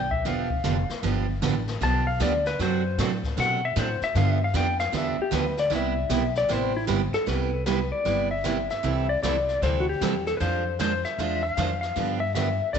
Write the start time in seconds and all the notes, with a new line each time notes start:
Already playing: B1 G5
0.11 E5, kick
0.25 E1 D3 F3 B3 D4 G4 F5, brush sweep, kick, snare
0.50 kick
0.64 F1 D3 F3 B3 D4 G4, kick, snare, hi-hat pedal
0.90 muted upright bass stroke, snare
1.03 G1 D3 F3 B3 D4 G4, brush sweep, kick, snare
1.42 A1 D3 F3 B3 D4 G4, kick, snare, hi-hat pedal
1.67 snare
1.81 B1 D3 F3 B3 D4 G4 A5, brush sweep, kick, snare
2.07 F5
2.20 D2 D3 F3 B3 D4 G4 D5, kick, snare, hi-hat pedal
2.46 B4, snare
2.59 F#2 C3 F#3 A3 D4 F#4 C5, brush sweep, kick, snare
2.98 A2 C3 F#3 A3 D4 F#4, kick, snare, hi-hat pedal
3.24 kick, snare
3.37 B2 C3 F#3 A3 D4 F#4 F#5, brush sweep, kick, snare
3.65 E5
3.76 A2 C3 F#3 A3 D4 F#4 C5, kick, snare, hi-hat pedal
4.01 E5, muted upright bass stroke, snare
4.15 G2 D3 F3 B3 D4 G4 F5, brush sweep, kick, snare
4.31 E5
4.44 F5
4.54 F2 D3 F3 B3 D4 G4 G5, kick, snare, hi-hat pedal
4.79 F5, snare
4.92 E2 D3 F3 B3 D4 G4, brush sweep, kick, snare
4.97 E5
5.18 G4, muted upright bass stroke
5.31 D2 D3 F3 B3 D4 G4, kick, snare, hi-hat pedal
5.35 B4
5.57 D5, snare
5.70 C2 C3 G3 B3 E4 G4, brush sweep, kick, snare
5.75 E5
6.09 B1 C3 G3 B3 E4 G4, kick, snare, hi-hat pedal
6.35 D5, snare
6.49 A1 C3 G3 B3 E4 G4 C5, brush sweep, kick, snare
6.76 E4
6.87 G1 C3 G3 B3 E4 G4, kick, snare, hi-hat pedal
7.13 A4, muted upright bass stroke, snare
7.26 C2 C3 G3 B3 E4 G4 B4, brush sweep, kick, snare
7.66 C3 G3 B3 E4 G4 B4, kick, snare, hi-hat pedal
7.92 D5
8.05 G1 C3 G3 B3 E4 G4, brush sweep, kick, snare
8.31 E5
8.44 C3 G3 B3 E4 G4, kick, snare, hi-hat pedal
8.70 E5, snare
8.83 C2 C3 E3 G3 C4 E4 A4, brush sweep, kick, snare
9.09 D5
9.23 C2 C3 E3 G3 C4 E4 A4 D5, kick, snare, hi-hat pedal
9.49 snare
9.62 D2 C3 E3 G3 C4 E4 A4 C5, brush sweep, kick, snare
9.80 F#4
9.89 G4
10.01 E2 C3 E3 G3 C4 E4 A4, kick, snare, hi-hat pedal
10.26 A4, snare
10.37 F2 F3 G#3 D4 B4 C5, brush sweep, kick, snare
10.41 F4 C5
10.79 F3 G#3 D4 F4 C5, kick, snare, hi-hat pedal
11.04 E5, snare
11.18 E2 F3 G#3 D4 F4 C5, brush sweep, kick, snare
11.43 E5
11.54 F2 F5, kick, snare, hi-hat pedal
11.58 F3 G#3 D4 F4 C5
11.81 F5, snare
11.96 G2 D3 F3 B3 D4 G4, brush sweep, kick, snare
12.20 E5
12.35 D3 F3 B3 D4 G4 E5, kick, snare, hi-hat pedal
12.73 D2 D3 F3 B3 D4 D5, brush sweep, kick, snare